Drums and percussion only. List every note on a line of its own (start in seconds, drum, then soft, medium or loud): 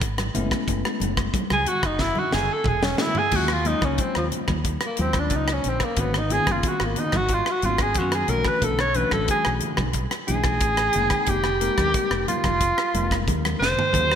0.01 kick loud
0.01 closed hi-hat medium
0.18 cross-stick medium
0.18 closed hi-hat soft
0.18 high conga medium
0.35 closed hi-hat medium
0.35 low conga medium
0.51 kick medium
0.51 cross-stick medium
0.51 closed hi-hat soft
0.68 kick medium
0.68 closed hi-hat medium
0.85 cross-stick medium
1.00 closed hi-hat medium
1.00 high conga medium
1.17 kick medium
1.17 cross-stick medium
1.17 closed hi-hat soft
1.34 kick loud
1.34 closed hi-hat medium
1.34 high conga medium
1.50 cross-stick medium
1.50 high conga medium
1.66 closed hi-hat medium
1.66 low conga medium
1.83 kick medium
1.83 cross-stick medium
1.83 closed hi-hat soft
1.99 kick medium
1.99 snare medium
1.99 low conga medium
2.15 high conga medium
2.31 snare medium
2.31 low conga medium
2.64 kick loud
2.64 mid tom medium
2.82 snare medium
2.82 high conga medium
2.97 snare loud
2.97 low conga medium
3.15 floor tom medium
3.31 kick medium
3.31 crash loud
3.31 low conga medium
3.48 cross-stick medium
3.64 closed hi-hat medium
3.64 low conga medium
3.81 kick medium
3.81 cross-stick medium
3.81 high conga medium
3.98 kick loud
3.98 closed hi-hat medium
4.15 cross-stick medium
4.32 closed hi-hat medium
4.32 low conga medium
4.48 kick medium
4.48 cross-stick medium
4.48 high conga medium
4.64 kick medium
4.64 closed hi-hat medium
4.80 cross-stick medium
4.80 closed hi-hat soft
4.97 closed hi-hat medium
4.97 high conga medium
5.13 kick medium
5.13 cross-stick medium
5.13 closed hi-hat soft
5.30 kick loud
5.30 closed hi-hat medium
5.47 cross-stick medium
5.47 closed hi-hat soft
5.64 closed hi-hat medium
5.64 low conga medium
5.80 kick medium
5.80 cross-stick medium
5.80 closed hi-hat soft
5.96 kick medium
5.96 closed hi-hat medium
5.96 low conga medium
6.14 cross-stick medium
6.30 closed hi-hat medium
6.30 low conga medium
6.46 kick medium
6.46 cross-stick medium
6.46 closed hi-hat soft
6.46 high conga medium
6.63 kick loud
6.63 closed hi-hat medium
6.80 cross-stick medium
6.96 closed hi-hat medium
6.96 low conga medium
7.12 kick medium
7.12 cross-stick medium
7.12 closed hi-hat soft
7.12 high conga medium
7.28 kick medium
7.28 closed hi-hat medium
7.46 cross-stick medium
7.62 closed hi-hat medium
7.62 high conga medium
7.78 kick medium
7.78 cross-stick medium
7.78 closed hi-hat soft
7.94 kick loud
7.94 closed hi-hat medium
8.11 cross-stick medium
8.11 closed hi-hat soft
8.28 closed hi-hat medium
8.28 low conga medium
8.45 kick medium
8.45 cross-stick medium
8.62 kick medium
8.62 closed hi-hat medium
8.62 low conga medium
8.79 cross-stick medium
8.94 closed hi-hat medium
8.94 low conga medium
9.11 kick medium
9.11 cross-stick medium
9.11 high conga medium
9.28 kick loud
9.28 closed hi-hat medium
9.45 cross-stick medium
9.60 closed hi-hat medium
9.60 low conga medium
9.77 kick medium
9.77 cross-stick medium
9.77 high conga medium
9.93 kick medium
9.93 closed hi-hat medium
10.11 cross-stick medium
10.11 closed hi-hat soft
10.28 closed hi-hat medium
10.28 high conga medium
10.43 kick medium
10.43 cross-stick medium
10.43 closed hi-hat soft
10.60 kick loud
10.60 closed hi-hat medium
10.77 cross-stick medium
10.77 closed hi-hat soft
10.93 closed hi-hat medium
10.93 low conga medium
11.10 kick medium
11.10 cross-stick medium
11.10 closed hi-hat soft
11.26 kick medium
11.26 closed hi-hat medium
11.26 low conga medium
11.44 cross-stick medium
11.61 closed hi-hat medium
11.77 kick medium
11.77 cross-stick medium
11.77 closed hi-hat soft
11.77 high conga medium
11.94 kick loud
11.94 closed hi-hat medium
12.11 cross-stick medium
12.28 closed hi-hat medium
12.28 high conga medium
12.28 low conga medium
12.43 kick medium
12.43 cross-stick medium
12.43 closed hi-hat soft
12.43 high conga medium
12.60 kick medium
12.60 closed hi-hat medium
12.78 cross-stick medium
12.94 closed hi-hat medium
12.94 high conga medium
13.11 kick medium
13.11 cross-stick medium
13.11 closed hi-hat soft
13.27 kick loud
13.27 closed hi-hat medium
13.27 high conga medium
13.45 cross-stick medium
13.45 closed hi-hat soft
13.45 high conga medium
13.62 snare medium
13.62 low conga medium
13.77 floor tom medium
13.77 low conga medium
13.93 kick medium
13.93 closed hi-hat medium
13.93 low conga medium
14.11 cross-stick medium